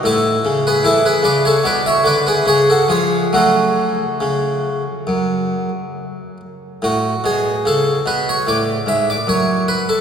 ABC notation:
X:1
M:4/4
L:1/16
Q:1/4=72
K:F#m
V:1 name="Harpsichord"
[EA]3 [GB] [EA] [GB] [Bd] [Ac] [Bd] [ce] [Bd] [GB] [Gc] [FA] [^EG]2 | [CF]12- [CF]2 z2 | F2 G2 A2 B c d2 e d c2 B A |]
V:2 name="Harpsichord" clef=bass
A,,2 C,2 E,2 C,2 B,,2 D,2 C,2 ^E,2 | [F,A,]4 C,4 F,,4 z4 | A,,2 B,,2 C,2 B,,2 A,,2 G,,2 F,,4 |]